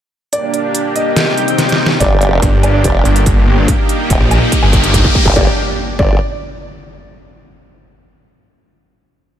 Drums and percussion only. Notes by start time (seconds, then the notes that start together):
0.33 closed hi-hat
0.54 closed hi-hat
0.75 closed hi-hat
0.96 closed hi-hat
1.17 snare, closed hi-hat
1.37 closed hi-hat
1.48 closed hi-hat
1.58 snare, closed hi-hat
1.69 snare, closed hi-hat
1.86 snare
2.00 kick, closed hi-hat
2.21 closed hi-hat
2.42 kick, closed hi-hat
2.63 closed hi-hat, low woodblock
2.84 kick, closed hi-hat
3.05 closed hi-hat
3.16 closed hi-hat
3.26 kick, closed hi-hat
3.68 kick, closed hi-hat
3.89 closed hi-hat
4.10 kick, closed hi-hat
4.31 closed hi-hat, low woodblock
4.52 kick, closed hi-hat
4.63 low woodblock
4.73 kick, closed hi-hat
4.84 closed hi-hat
4.94 kick, closed hi-hat
5.05 kick
5.15 kick
5.26 kick
5.36 kick
5.99 kick